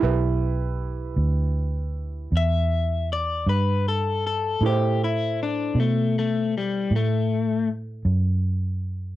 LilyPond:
<<
  \new Staff \with { instrumentName = "Grand piano" } { \time 12/8 \key e \minor \tempo 4. = 52 <e' g' b'>1. | <e' a' c''>1. | }
  \new Staff \with { instrumentName = "Clean electric guitar" } { \time 12/8 \key e \minor r2. e''4 d''8 b'8 a'8 a'8 | g'8 e'8 d'8 a8 a8 g8 a4 r2 | }
  \new Staff \with { instrumentName = "Fingered electric bass" } { \clef bass \time 12/8 \key e \minor b,,4. d,4. e,4. g,4. | a,4. b,4. a,4. fis,4. | }
>>